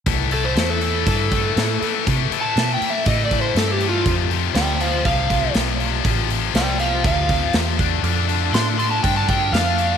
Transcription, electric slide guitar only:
\new Staff \with { instrumentName = "Electric slide guitar" } { \time 4/4 \key a \minor \tempo 4 = 120 r8 a'16 c''8 a'8. a'2 | \tuplet 3/2 { r4 a''8~ a''8 g''8 e''8 dis''8 d''8 c''8 a'8 g'8 f'8~ } | f'16 r8. <d'' g''>8 <c'' f''>8 f''4 r4 | r4 <d'' g''>8 <c'' f''>8 f''4 r4 |
r4 c'''16 r16 c'''16 a''16 g''16 a''16 g''8 f''4 | }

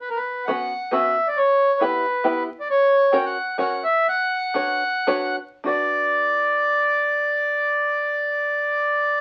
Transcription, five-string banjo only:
\new Staff \with { instrumentName = "Five-string banjo" } { \time 3/4 \key b \minor \tempo 4 = 125 r4 <b cis' fis' b'>8 r8 <b cis' fis' b'>8 r8 | r4 <b e' g' b'>8 r8 <b e' g' b'>8 r8 | r4 <cis' fis' ais' cis''>8 r8 <cis' fis' ais' cis''>8 r8 | r4 <d' fis' b' cis''>8 r8 <d' fis' b' cis''>8 r8 |
<d' fis' b' d''>2.~ | <d' fis' b' d''>2. | }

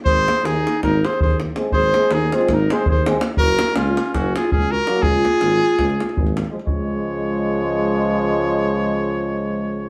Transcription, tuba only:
\new Staff \with { instrumentName = "Tuba" } { \clef bass \time 9/8 \key des \major \tempo 4. = 109 aes,,4 ees,4 aes,,4 ees,4. | aes,,4 ees,4 aes,,4 ees,4. | ges,,4 des,4 ges,,4 des,4. | des,4 aes,,4 des,4 aes,,4. |
des,1~ des,8~ | des,1~ des,8 | }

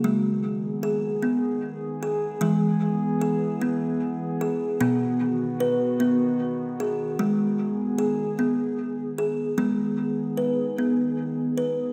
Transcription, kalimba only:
<<
  \new Staff \with { instrumentName = "Kalimba" } { \time 3/4 \key gis \minor \tempo 4 = 75 gis4 gis'8 b4 gis'8 | gis4 gis'8 b4 gis'8 | b4 b'8 b4 gis'8 | r4 gis'8 b4 gis'8 |
b4 b'8 b4 b'8 | }
  \new Staff \with { instrumentName = "Kalimba" } { \clef bass \time 3/4 \key gis \minor r2. | e2. | b,2. | gis2. |
gis2. | }
>>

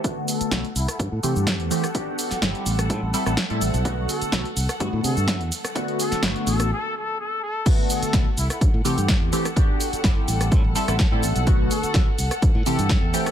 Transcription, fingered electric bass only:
\new Staff \with { instrumentName = "Fingered electric bass" } { \clef bass \time 4/4 \key c \lydian \tempo 4 = 126 r4 b,,16 r16 c,16 r16 g,16 a,16 c16 g,8 e,16 r8 | r4 g,,16 r16 a,,8 a,16 a,,16 r16 a,,16 r16 a,16 a,,16 b,,16~ | b,,8 r8 b,,16 r16 c,16 r16 g,16 a,16 c16 g,8 e,16 r8 | r4 g,,16 r16 a,,8 r2 |
r4 b,,16 r16 c,16 r16 g,16 a,16 c16 g,8 e,16 r8 | r4 g,,16 r16 a,,8 a,16 a,,16 r16 a,,16 r16 a,16 a,,16 b,,16~ | b,,8 r8 b,,16 r16 c,16 r16 g,16 a,16 c16 g,8 e,16 r8 | }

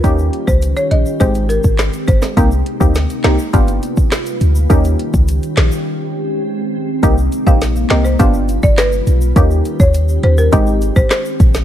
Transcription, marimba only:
\new Staff \with { instrumentName = "Marimba" } { \time 4/4 \key c \minor \tempo 4 = 103 r8. c''16 r16 des''16 ees''16 r16 c''16 r16 bes'16 r8. c''16 r16 | r1 | r1 | r8. f''16 r8 ees''16 c''16 f''16 r8 d''16 b'8. r16 |
r8. des''16 r8 c''16 bes'16 ees''16 r8 c''16 c''8. r16 | }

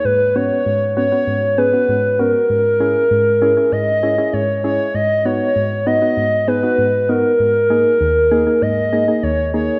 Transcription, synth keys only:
\new Staff \with { instrumentName = "Synth keys" } { \time 4/4 \key gis \minor \tempo 4 = 98 << { r8 <b cis' fis'>8 r8 <b cis' fis'>16 <b cis' fis'>8 r16 <b cis' gis'>16 <b cis' fis'>8 r16 <b cis' fis'>8 | r8 <cis' e' gis'>8 r8 <cis' e' gis'>16 <cis' e' gis'>8 r16 <cis' e' gis'>16 <cis' e' gis'>8 r16 <cis' e' gis'>8 | r8 <b dis' fis'>8 r8 <b dis' fis'>16 <b dis' fis'>8 r16 <b dis' gis'>16 <b dis' fis'>8 r16 <b dis' fis'>8 | r8 <ais dis' gis'>8 r8 <ais dis' gis'>16 <ais dis' gis'>8 r16 <ais dis' gis'>16 <ais dis' gis'>8 r16 <ais dis' gis'>8 | } \\ { gis,4 gis,4 gis,4 gis,4 | gis,4 gis,4 gis,4 gis,4 | gis,4 gis,4 gis,4 gis,4 | gis,4 dis,4 gis,4 dis,4 | } >> }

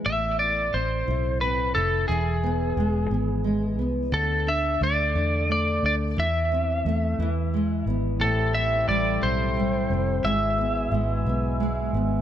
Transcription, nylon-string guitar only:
\new Staff \with { instrumentName = "Nylon-string guitar" } { \time 6/8 \key a \minor \tempo 4. = 59 a,8 e'8 c'8 e'8 c'8 e'8 | e8 b8 gis8 b8 gis8 b8 | d8 d'8 a8 d'8 a8 d'8 | e8 c'8 a8 e8 gis8 b8 |
a,8 c'8 g8 c'8 g8 c'8 | gis,8 b8 gis8 b8 gis8 b8 | }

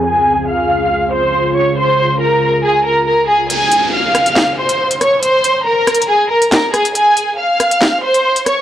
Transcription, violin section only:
\new Staff \with { instrumentName = "Violin section" } { \time 4/4 \key f \minor \tempo 4 = 139 <aes' aes''>4 <f'' f'''>4. <c'' c'''>4 <des'' des'''>8 | <c'' c'''>4 <bes' bes''>4 <aes' aes''>8 <bes' bes''>8 <bes' bes''>8 <aes' aes''>8 | <aes' aes''>4 <f'' f'''>4. <c'' c'''>4 <des'' des'''>8 | <c'' c'''>4 <bes' bes''>4 <aes' aes''>8 <bes' bes''>8 <bes' bes''>8 <aes' aes''>8 |
<aes' aes''>4 <f'' f'''>4. <c'' c'''>4 <des'' des'''>8 | }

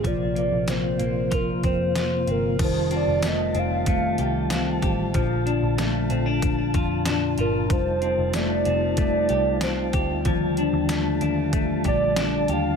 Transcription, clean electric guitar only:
\new Staff \with { instrumentName = "Clean electric guitar" } { \time 4/4 \key bes \major \tempo 4 = 94 f8 bes8 c'8 bes8 f'8 c'8 f'8 c'8 | ees8 c'8 a8 c'8 a8 g'8 c'8 g'8 | f8 d'8 a8 c'16 d'8. f'8 d'8 f'8 | r8 c'8 a8 c'8 a8 g'8 c'8 g'8 |
f8 d'8 a8 d'8 a8 g'8 d'8 g'8 | }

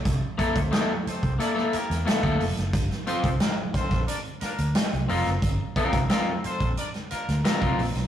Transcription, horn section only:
\new Staff \with { instrumentName = "Horn section" } { \time 4/4 \key g \dorian \tempo 4 = 89 r8. <c' g' a' c''>16 <bes e' g' bes'>16 r16 <c' g' a' c''>8 <d' bes' d''>16 r16 <bes e' g' bes'>8 r4 | r8. <c' f' a' c''>16 <bes d' f' bes'>16 r16 <c' f' a' c''>8 <d' bes' d''>16 r16 <bes d' f' bes'>8 r4 | r8. <c' f' a' c''>16 <bes d' f' bes'>16 r16 <c' f' a' c''>8 <d' bes' d''>16 r16 <bes d' f' bes'>8 r4 | }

